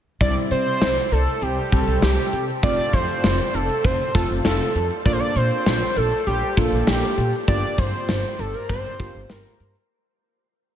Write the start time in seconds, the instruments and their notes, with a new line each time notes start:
0.21 upright bass C2, synth keys G3 C4 E4, analog synth lead D5, kick, closed hi-hat
0.51 upright bass C3, analog synth lead C5, closed hi-hat
0.66 closed hi-hat
0.81 upright bass C2, snare, closed hi-hat
1.12 upright bass C2, analog synth lead A4, closed hi-hat
1.27 closed hi-hat
1.42 upright bass C2, analog synth lead G4, closed hi-hat
1.72 upright bass C2, synth keys G3 C4 G4, analog synth lead A4, kick, closed hi-hat
1.87 upright bass C2, closed hi-hat
2.02 upright bass C2, analog synth lead G4, snare, closed hi-hat
2.33 upright bass C3, closed hi-hat
2.48 closed hi-hat
2.63 upright bass F1, synth keys A3 C4 F4, analog synth lead D5, kick, closed hi-hat
2.93 upright bass F2, analog synth lead C5, kick, closed hi-hat
3.08 closed hi-hat
3.24 upright bass F1, snare, closed hi-hat
3.54 upright bass F1, analog synth lead A4, closed hi-hat
3.69 closed hi-hat
3.84 upright bass F1, analog synth lead C5, kick, closed hi-hat
4.15 upright bass F1, synth keys A3 C4 F4, analog synth lead A4, kick, closed hi-hat
4.30 upright bass F1, closed hi-hat
4.45 upright bass F1, analog synth lead A4, snare, closed hi-hat
4.75 upright bass F2, closed hi-hat
4.91 closed hi-hat
5.06 upright bass A#1, synth keys A#3 D4 F4, analog synth lead D5, kick, closed hi-hat
5.13 analog synth lead C5
5.20 analog synth lead D5
5.36 upright bass A#2, analog synth lead C5, closed hi-hat
5.51 closed hi-hat
5.66 upright bass A#1, snare, closed hi-hat
5.96 upright bass A#1, analog synth lead A4, closed hi-hat
6.12 closed hi-hat
6.27 upright bass A#1, analog synth lead G4, closed hi-hat
6.57 upright bass A#1, synth keys A#3 D4 F4, analog synth lead A4, kick, closed hi-hat
6.72 upright bass A#1, closed hi-hat
6.87 upright bass A#1, analog synth lead G4, snare, closed hi-hat
7.18 upright bass A#2, closed hi-hat
7.33 closed hi-hat
7.48 upright bass G1, synth keys A#3 F4 G4, analog synth lead D5, kick, closed hi-hat
7.78 upright bass G2, analog synth lead C5, kick, closed hi-hat
7.93 closed hi-hat
8.09 upright bass G1, snare, closed hi-hat
8.39 upright bass G1, analog synth lead A4, closed hi-hat
8.54 analog synth lead A#4, closed hi-hat
8.69 upright bass G1, analog synth lead C5, kick, closed hi-hat
8.99 upright bass G1, synth keys A#3 F4 G4, kick, closed hi-hat
9.15 upright bass G1, closed hi-hat
9.30 analog synth lead A#4, snare, closed hi-hat
9.60 upright bass G2, closed hi-hat
9.75 closed hi-hat